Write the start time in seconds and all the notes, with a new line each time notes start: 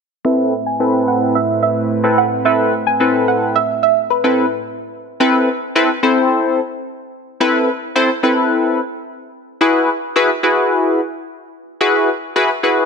0.25 A2 A3 C4 E4 A4 B4 E5
0.66 G#5
0.80 C4 E4 A4 B4
1.08 F#5
1.35 E5
1.63 E5
2.04 C4 E4 A4 B4
2.18 F#5
2.45 C4 E4 A4 B4 E5
2.87 G#5
3.00 C4 E4 A4 B4
3.28 F#5
3.56 E5
3.83 E5
4.10 B4
4.24 C4 E4 A4 B4
5.20 C4 E4 A4 B4
5.75 C4 E4 A4 B4
6.03 C4 E4 A4 C5
7.40 C4 E4 A4 B4
7.95 C4 E4 A4 C5
8.23 C4 E4 A4 B4
9.61 E4 F#4 G#4 B4
10.16 E4 F#4 G#4 B4
10.43 E4 F#4 G#4 B4
11.81 E4 F#4 G#4 B4
12.36 E4 F#4 G#4 B4
12.63 E4 F#4 G#4 B4